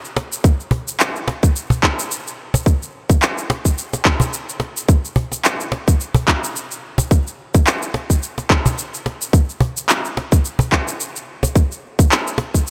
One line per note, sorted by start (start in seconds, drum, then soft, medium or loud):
0.05 shaker soft
0.17 cajon slap medium
0.32 shaker medium
0.44 kick loud
0.44 shaker medium
0.60 shaker soft
0.71 cajon bass medium
0.88 shaker medium
1.00 clap medium
1.00 shaker medium
1.16 shaker soft
1.28 cajon slap medium
1.43 kick loud
1.43 shaker medium
1.56 shaker medium
1.70 cajon bass medium
1.70 shaker soft
1.83 kick medium
1.83 clap medium
1.99 shaker medium
2.12 shaker medium
2.27 shaker soft
2.54 cajon bass medium
2.54 cajon slap medium
2.54 shaker medium
2.66 kick loud
2.66 shaker medium
2.83 shaker soft
3.10 kick loud
3.10 shaker medium
3.22 clap medium
3.22 shaker medium
3.38 shaker soft
3.50 cajon slap medium
3.65 kick medium
3.65 shaker medium
3.78 shaker medium
3.93 cajon slap medium
3.93 shaker soft
4.05 kick loud
4.05 clap medium
4.20 cajon bass medium
4.20 shaker medium
4.33 shaker medium
4.49 shaker soft
4.60 cajon slap medium
4.77 shaker medium
4.89 kick loud
4.89 shaker medium
5.05 shaker soft
5.16 cajon bass medium
5.32 cajon slap medium
5.32 shaker medium
5.45 clap medium
5.45 shaker medium
5.60 shaker soft
5.72 cajon slap medium
5.88 kick loud
5.88 shaker medium
6.00 shaker medium
6.14 cajon bass medium
6.14 shaker soft
6.28 kick medium
6.28 clap medium
6.44 shaker medium
6.56 shaker medium
6.71 shaker soft
6.98 cajon bass medium
6.98 cajon slap medium
6.98 shaker medium
7.11 kick loud
7.11 shaker medium
7.27 shaker soft
7.55 kick loud
7.55 shaker medium
7.67 clap medium
7.67 shaker soft
7.83 shaker soft
7.94 cajon slap medium
8.10 kick medium
8.10 shaker medium
8.23 shaker soft
8.38 cajon slap medium
8.38 shaker soft
8.50 kick loud
8.50 clap medium
8.66 cajon bass medium
8.66 shaker medium
8.78 shaker medium
8.94 shaker soft
9.06 cajon slap medium
9.22 shaker medium
9.33 kick loud
9.33 shaker medium
9.49 shaker soft
9.60 cajon bass medium
9.77 shaker medium
9.89 clap medium
9.89 shaker medium
10.05 shaker soft
10.17 cajon slap medium
10.32 kick medium
10.32 shaker medium
10.45 shaker medium
10.59 cajon bass medium
10.59 shaker soft
10.72 kick medium
10.72 clap medium
10.88 shaker medium
11.00 shaker medium
11.16 shaker soft
11.43 cajon bass medium
11.43 cajon slap medium
11.43 shaker medium
11.56 kick loud
11.56 shaker medium
11.72 shaker soft
11.99 kick loud
11.99 shaker medium
12.12 clap medium
12.12 shaker soft
12.27 shaker soft
12.38 cajon slap medium
12.54 kick medium
12.54 shaker medium